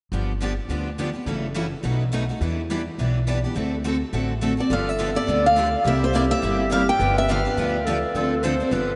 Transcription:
0.12 G1 D3 F3 B3 D4 G4
0.41 D3 F3 B3 D4 G4
0.69 D2 D3 F3 B3 D4 G4
0.99 D3 F3 B3 D4 G4
1.13 B3 D4 G4
1.26 F#1 C#3 E3 F#3 A3 C#4 E4 F#4 A4
1.54 C#3 E3 F#3 A3 C#4 E4 F#4 A4
1.83 B1 B2 F#3 A3 D#4 F#4 B4
2.12 B2 F#3 A3 D#4 F#4 B4
2.29 A3 D#4 F#4
2.41 E2 E3 G3 B3 D4 E4 G4 B4
2.70 E3 G3 B3 D4 E4 G4 B4
2.98 B1 E3 G3 B3 D4 E4 G4 B4
3.27 E3 G3 B3 D4 E4 G4 B4
3.44 B3 D4 G4
3.55 D2 D3 A3 C4 F#4 A4
3.84 D3 A3 C4 F#4 A4
4.13 A1 D3 A3 C4 F#4 A4
4.41 D3 A3 C4 F#4 A4
4.57 C4 F#4 A4 D5
4.70 G1 D3 F3 B3 D4 G4 A4 F5
4.89 E5
4.99 D3 F3 B3 D4 G4
5.15 B3 D4 G4 D5
5.28 D2 D3 F3 B3 D4 G4
5.46 F5
5.57 D3 F3 B3 D4 G4
5.85 C2 C3 G3 A#3 E4 G4 E5
6.04 C5
6.15 C3 G3 A#3 E4 G4 D5
6.31 A#3 E4 G4 E5
6.43 G1 C3 G3 A#3 E4 G4
6.71 C3 G3 A#3 E4 G4 F5
6.89 G5
7.00 G1 D3 F3 B3 D4 G4 B4
7.18 E5
7.29 D3 F3 B3 D4 G4 F5
7.45 B3 D4 G4
7.57 D2 D3 F3 B3 D4 G4
7.86 D3 F3 B3 D4 G4 A4
8.14 D2 D3 F3 C4 D4 A4
8.43 D3 F3 C4 D4 A4 C5
8.60 C4 D4 A4
8.71 G1 D3 F3 B3 D4 G4 B4

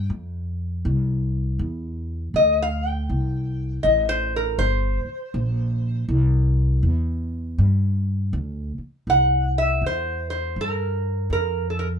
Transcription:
0.10 F2
0.85 C2
1.59 E2
2.34 D2 D#5
2.62 F5
2.87 G5
3.09 C2
3.83 A1 D#5
4.09 C5
4.36 A#4
4.58 G1 C5
5.05 muted upright bass stroke
5.34 A#1
6.08 C2
6.83 E2
7.58 G2
8.33 D2
8.78 muted upright bass stroke
9.07 C2 F#5
9.58 E5
9.82 E2
9.86 C5
10.30 C5
10.56 G2
10.61 A#4
11.30 F2 A#4
11.70 A4
11.79 A#4

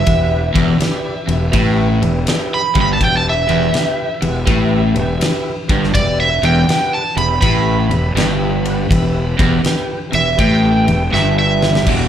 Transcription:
Already playing: E5
0.06 E1 E2 G4 B4 F#5, kick, ride
0.54 E1 E2 G4 B4 E5, kick, ride
0.79 G4 B4 D5, muted overdriven electric guitar stroke, muted fingered electric bass stroke, snare, ride
1.27 E1 E2 G4 B4 E5, ride
1.51 A1 A2 G4 B4 E5, kick, ride
2.00 E1 E2 G4 B4 E5, ride
2.25 G4 B4 E5, snare, ride
2.54 B5
2.74 G1 G2 G4 B4 E5, kick, ride
2.81 B5
2.93 A5
2.99 E1 E2 G4 B4 E5, kick, ride
3.04 G5
3.17 A5
3.29 E5
3.46 E1 E2 G4 B4 E5, ride
3.72 G4 B4 G5, muted overdriven electric guitar stroke, muted fingered electric bass stroke, snare, ride
4.21 E1 E2 G4 B4 F#5, ride
4.45 A1 A2 G4 B4 E5, kick, ride
4.94 E1 E2 G4 B4 G5, ride
5.18 G4 B4 E5, ride
5.23 snare
5.67 G1 G2 G4 B4 G5, kick, ride
5.84 snare
5.93 E1 E2 G4 B4 D5 E5, kick, ride
6.20 E5
6.43 E1 E2 G4 B4 E5 G5, ride
6.68 G4 B4 F#5, muted fingered electric bass stroke, muted overdriven electric guitar stroke, snare, ride
6.94 A5
7.16 E1 E2 G4 B4 E5 B5, ride
7.41 A1 A2 G4 B4 E5 B5, kick, ride
7.89 E1 E2 G4 B4 E5, ride
8.15 G1 G2 G4 B4 E5, snare, ride
8.65 G4 B4 F#5, ride
8.90 E1 E2 G4 B4 E5, kick, ride
9.38 E1 E2 G4 B4 E5, kick, ride
9.63 G4 B4 G5, muted overdriven electric guitar stroke, muted fingered electric bass stroke, snare, ride
10.09 E2 G4 B4 E5
10.13 E1 E5, ride
10.36 A1 A2 G4 B4 E5, kick, ride
10.40 G5
10.83 G4 B4 E5
10.87 E1 E2, ride
11.09 G2 G4 B4 G5
11.13 G1 E5, snare
11.39 E5
11.59 G4 B4 E5, snare
11.75 snare
11.84 E1 E2 B2 G4 D5 F#5, kick, crash

